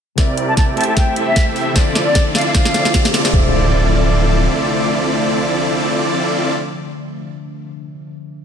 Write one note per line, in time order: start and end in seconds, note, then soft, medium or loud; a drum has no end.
0.16 0.79 C2 medium
0.16 0.72 C3 medium
0.16 3.30 C3 medium
0.16 1.74 E3 medium
0.16 0.73 C4 medium
0.16 0.74 E4 medium
0.16 0.74 G4 medium
0.16 0.73 A#4 medium
0.16 0.74 A#4 medium
0.16 0.73 D5 medium
0.16 0.74 D5 medium
0.16 kick medium
0.16 snare soft
0.16 closed hi-hat medium
0.16 riser medium
0.20 0.74 E5 medium
0.37 closed hi-hat medium
0.49 0.54 A5 medium
0.57 0.64 A5 medium
0.57 kick medium
0.57 snare medium
0.57 closed hi-hat medium
0.75 1.74 A1 medium
0.75 1.75 G3 medium
0.75 1.71 A3 medium
0.75 3.31 A3 medium
0.75 1.72 C4 medium
0.75 1.75 E4 medium
0.75 1.72 E4 medium
0.75 1.72 G4 medium
0.75 1.72 A4 medium
0.75 1.72 C5 medium
0.75 1.72 E5 loud
0.75 1.73 E5 medium
0.75 1.73 G5 loud
0.75 0.84 A5 medium
0.75 closed hi-hat soft
0.81 closed hi-hat medium
0.84 closed hi-hat medium
0.88 0.94 A5 medium
0.97 1.15 G5 medium
0.97 kick medium
0.97 snare medium
0.97 closed hi-hat medium
1.16 closed hi-hat medium
1.27 1.45 E5 medium
1.36 kick loud
1.36 snare medium
1.36 closed hi-hat medium
1.56 open hi-hat medium
1.73 3.32 D1 loud
1.73 3.29 D3 medium
1.73 3.30 F3 medium
1.73 3.32 F3 medium
1.73 3.30 C4 medium
1.73 3.29 D4 medium
1.73 3.32 D4 medium
1.73 3.30 E4 medium
1.73 3.30 F4 medium
1.73 3.30 A4 medium
1.73 3.30 C5 medium
1.73 3.30 D5 loud
1.73 3.31 D5 medium
1.73 kick loud
1.73 snare medium
1.73 closed hi-hat medium
1.95 snare medium
1.95 closed hi-hat medium
2.06 2.24 D5 medium
2.15 kick loud
2.15 snare medium
2.15 closed hi-hat medium
2.35 2.42 F5 medium
2.35 snare medium
2.35 closed hi-hat soft
2.38 closed hi-hat medium
2.41 closed hi-hat medium
2.46 2.52 F5 medium
2.55 3.11 F5 medium
2.55 kick loud
2.55 snare medium
2.55 closed hi-hat medium
2.65 snare medium
2.74 snare loud
2.74 closed hi-hat medium
2.85 snare medium
2.94 kick loud
2.94 snare loud
2.94 closed hi-hat medium
3.05 snare medium
3.14 snare loud
3.14 open hi-hat medium
3.25 snare medium
3.31 4.48 D1 loud
3.31 6.52 C3 medium
3.31 6.49 D3 medium
3.31 6.52 F3 medium
3.31 6.52 A3 medium
3.31 6.52 C4 medium
3.31 6.50 D4 medium
3.31 6.52 D4 medium
3.31 6.52 E4 medium
3.31 6.52 F4 medium
3.31 6.52 A4 medium
3.31 6.52 D5 medium
3.31 kick loud
3.31 impact medium
3.35 6.53 C5 medium
3.35 6.55 E5 medium